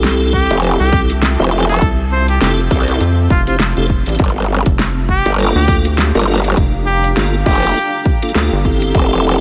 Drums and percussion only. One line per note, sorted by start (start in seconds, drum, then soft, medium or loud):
0.04 snare loud
0.04 closed hi-hat soft
0.33 kick medium
0.51 closed hi-hat medium
0.63 closed hi-hat medium
0.93 kick loud
1.10 closed hi-hat medium
1.22 snare loud
1.22 closed hi-hat medium
1.69 closed hi-hat medium
1.82 kick loud
1.82 closed hi-hat soft
2.28 closed hi-hat medium
2.41 snare loud
2.41 closed hi-hat medium
2.71 kick loud
2.71 snare soft
2.88 closed hi-hat medium
3.01 closed hi-hat medium
3.30 kick loud
3.47 closed hi-hat medium
3.59 snare loud
3.59 closed hi-hat medium
3.90 kick medium
4.06 closed hi-hat medium
4.09 closed hi-hat soft
4.15 closed hi-hat soft
4.19 kick loud
4.19 closed hi-hat soft
4.25 closed hi-hat soft
4.29 closed hi-hat soft
4.66 kick loud
4.66 closed hi-hat medium
4.79 snare loud
4.79 closed hi-hat medium
5.09 kick medium
5.26 closed hi-hat medium
5.39 closed hi-hat soft
5.68 kick loud
5.85 closed hi-hat medium
5.98 snare loud
5.98 closed hi-hat soft
6.44 closed hi-hat medium
6.57 kick loud
6.57 closed hi-hat soft
7.04 closed hi-hat medium
7.17 snare loud
7.17 closed hi-hat soft
7.46 kick loud
7.63 closed hi-hat medium
7.76 closed hi-hat soft
8.05 kick loud
8.22 closed hi-hat medium
8.29 closed hi-hat soft
8.35 snare loud
8.65 kick medium
8.82 closed hi-hat medium
8.95 kick loud
8.95 closed hi-hat medium